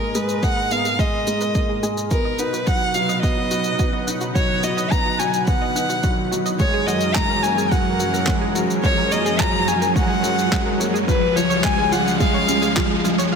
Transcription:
Already playing: analog synth pad G#2 G#3 A#4 D#5, felt piano G#3 A#3 B3, violin A#4, riser
0.01 synth arpeggio sound G#4
0.15 felt piano G#3, synth arpeggio sound G#4, violin B4, shaker
0.29 shaker
0.43 felt piano A#3, synth arpeggio sound G#4, violin F#5, kick, shaker
0.57 synth arpeggio sound B4
0.71 felt piano B3, synth arpeggio sound D#5, violin F5, shaker
0.85 synth arpeggio sound G#4, shaker
0.99 felt piano G#3, synth arpeggio sound G#4, violin D#5, kick, shaker
1.27 felt piano G#3, synth arpeggio sound G#4, shaker
1.41 synth arpeggio sound B4, shaker
1.55 felt piano A#3, synth arpeggio sound D#5, kick, shaker
1.69 synth arpeggio sound G#4
1.83 felt piano G#3, synth arpeggio sound G#4, shaker
1.97 shaker
2.11 analog synth pad B2 F#3 D#4 B4 F#5, felt piano B3, synth arpeggio sound F#4, violin A#4, kick, shaker
2.25 synth arpeggio sound D#5
2.39 felt piano D#4, violin B4, synth arpeggio sound F#5, shaker
2.53 synth arpeggio sound F#4, shaker
2.67 felt piano F#3, synth arpeggio sound F#4, violin F#5, kick, shaker
2.94 felt piano F#3, synth arpeggio sound F#4, violin F5, shaker
3.09 synth arpeggio sound D#5, shaker
3.23 felt piano B3, violin D#5, synth arpeggio sound F#5, kick, shaker
3.37 synth arpeggio sound F#4
3.51 felt piano F#3, synth arpeggio sound F#4, shaker
3.64 shaker
3.79 felt piano B3, synth arpeggio sound F#4, kick, shaker
3.93 synth arpeggio sound D#5
4.07 felt piano D#4, synth arpeggio sound F#5, shaker
4.21 synth arpeggio sound F#4, shaker
4.35 felt piano F#3, synth arpeggio sound F#4, violin C#5, kick, shaker
4.63 felt piano F#3, synth arpeggio sound F#4, violin D#5, shaker
4.77 synth arpeggio sound D#5, shaker
4.91 felt piano B3, synth arpeggio sound F#5, violin A#5, kick, shaker
5.05 synth arpeggio sound F#4
5.19 felt piano F#3, synth arpeggio sound F#4, violin G#5, shaker
5.34 shaker
5.47 felt piano B3, synth arpeggio sound F#4, violin F#5, kick, shaker
5.61 synth arpeggio sound D#5
5.75 felt piano D#4, synth arpeggio sound F#5, shaker
5.89 synth arpeggio sound F#4, shaker
6.03 felt piano F#3, synth arpeggio sound F#4, kick, shaker
6.31 felt piano F#3, synth arpeggio sound F#4, shaker
6.46 synth arpeggio sound D#5, shaker
6.59 analog synth pad F#2 F#3 C#4 G#4 A#4, felt piano G#3, violin C#5, synth arpeggio sound C#5, kick, shaker
6.74 synth arpeggio sound G#4
6.87 felt piano F#3, synth arpeggio sound F#4, violin D#5, shaker
7.01 shaker
7.15 synth arpeggio sound F#4, violin A#5, kick, clap, shaker
7.30 synth arpeggio sound A#4
7.43 felt piano A#3, synth arpeggio sound C#5, violin G#5, shaker
7.58 synth arpeggio sound G#4, shaker
7.72 felt piano F#3, synth arpeggio sound F#4, violin F#5, kick, shaker
8.00 felt piano F#3, synth arpeggio sound F#4, shaker
8.14 synth arpeggio sound A#4, shaker
8.27 felt piano G#3, synth arpeggio sound C#5, kick, clap, shaker
8.41 synth arpeggio sound G#4
8.55 felt piano F#3, synth arpeggio sound F#4, shaker
8.70 shaker
8.83 felt piano G#3, synth arpeggio sound F#4, violin C#5, kick, shaker
8.97 synth arpeggio sound A#4
9.11 felt piano A#3, synth arpeggio sound C#5, violin D#5, shaker
9.26 synth arpeggio sound G#4, shaker
9.39 felt piano F#3, synth arpeggio sound F#4, violin A#5, kick, clap, shaker
9.68 felt piano F#3, synth arpeggio sound F#4, violin G#5, shaker
9.82 synth arpeggio sound A#4, shaker
9.96 felt piano G#3, synth arpeggio sound C#5, violin F#5, kick, shaker
10.10 synth arpeggio sound G#4
10.24 felt piano F#3, synth arpeggio sound F#4, shaker
10.39 shaker
10.52 felt piano G#3, synth arpeggio sound F#4, kick, clap, shaker
10.66 synth arpeggio sound A#4
10.80 felt piano A#3, synth arpeggio sound C#5, shaker
10.94 synth arpeggio sound G#4, shaker
11.08 analog synth pad C#2 C#3 G#3 F4, felt piano F3, synth arpeggio sound F4, violin B4, kick, shaker
11.36 felt piano F3, synth arpeggio sound F4, violin C#5, shaker
11.50 synth arpeggio sound C#5, shaker
11.64 felt piano G#3, synth arpeggio sound F5, violin G#5, kick, clap, shaker
11.78 synth arpeggio sound G#4
11.92 felt piano F3, synth arpeggio sound F4, violin F#5, shaker
12.08 shaker
12.20 felt piano G#3, synth arpeggio sound F4, violin F5, kick, shaker
12.34 synth arpeggio sound C#5
12.48 felt piano C#4, synth arpeggio sound F5, shaker
12.62 synth arpeggio sound G#4, shaker
12.76 felt piano F3, synth arpeggio sound F4, kick, clap, shaker
13.04 felt piano F3, synth arpeggio sound F4, shaker
13.18 synth arpeggio sound C#5, shaker
13.32 synth arpeggio sound F5

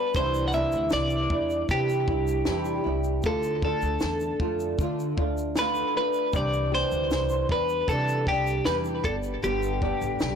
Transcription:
Already playing: nylon-string guitar G3 B3 D4 G4, clean electric guitar B4
0.14 upright bass C2, nylon-string guitar C3 E3 G3 D4 E4, clean electric guitar C5, kick, shaker
0.34 shaker
0.48 clean electric guitar F#5
0.52 nylon-string guitar C3 E3 G3 D4 E4, clean electric guitar E5, shaker
0.72 upright bass D2, shaker
0.90 upright bass C2, clean electric guitar D5, snare, shaker
1.10 shaker
1.30 upright bass E2, nylon-string guitar G3 D4 E4, kick
1.50 shaker
1.69 upright bass C3, nylon-string guitar E3 G3 D4 E4, clean electric guitar G4, kick, shaker
1.89 shaker
2.08 upright bass C2, nylon-string guitar G3 D4 E4, kick
2.27 shaker
2.45 upright bass E2, nylon-string guitar C3 E3 G3 D4 E4, snare, shaker
2.65 shaker
2.84 upright bass C2, nylon-string guitar G3 D4 E4
3.04 shaker
3.23 upright bass D2, nylon-string guitar D3 A3 D4 F4, clean electric guitar A4, kick, shaker
3.43 shaker
3.62 nylon-string guitar D3 A3 D4 F4, clean electric guitar A4, kick
3.82 upright bass D2, shaker
4.00 upright bass E2, snare, shaker
4.20 shaker
4.40 upright bass F2, nylon-string guitar A3 D4 F4, kick
4.60 shaker
4.78 upright bass D3, nylon-string guitar D3 A3 D4 F4, kick, shaker
4.99 shaker
5.17 upright bass D2, nylon-string guitar A3 D4 F4, kick
5.38 shaker
5.56 nylon-string guitar D3 A3 D4 F4, clean electric guitar B4, snare, shaker
5.75 shaker
5.95 nylon-string guitar A3 D4 F4, clean electric guitar B4
6.13 shaker
6.33 upright bass C2, nylon-string guitar C3 E3 G3 D4 G4, clean electric guitar D5, kick, shaker
6.53 shaker
6.72 nylon-string guitar C3 E3 G3 D4 G4, clean electric guitar C5
6.91 upright bass D2, shaker
7.11 upright bass C2, snare, shaker
7.29 shaker
7.49 upright bass E2, nylon-string guitar G3 D4 G4, clean electric guitar B4, kick
7.69 shaker
7.87 upright bass C3, nylon-string guitar E3 G3 D4 G4, clean electric guitar A4, kick, shaker
8.08 shaker
8.27 upright bass C2, nylon-string guitar G3 D4 G4, clean electric guitar G4, kick
8.47 shaker
8.65 upright bass E2, nylon-string guitar C3 E3 G3 D4 G4, clean electric guitar B4, snare, shaker
8.85 shaker
9.03 upright bass G1, nylon-string guitar G3 B3 D4 G4, clean electric guitar A4, kick, shaker
9.23 shaker
9.42 upright bass G1, nylon-string guitar G2 D3 G3 B3 D4 G4, clean electric guitar G4, shaker
9.63 shaker
9.82 nylon-string guitar G2 D3 G3 B3 D4 G4, kick
10.01 upright bass A1, shaker
10.20 upright bass B1, snare, shaker

